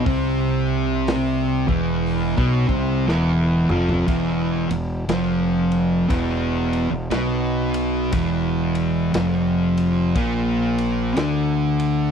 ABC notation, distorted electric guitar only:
X:1
M:4/4
L:1/16
Q:"Swing" 1/4=59
K:Clyd
V:1 name="Distorted electric guitar" clef=bass
[C,C]6 [E,,E,]3 [B,,B,] [C,C]2 [E,,E,]2 [=F,,=F,]2 | [E,,E,]2 E,,2 [=F,,=F,]4 [E,,E,]3 E,, [B,,B,]4 | [E,,E,]4 [=F,,=F,]4 [^A,,^A,]4 [D,D]4 |]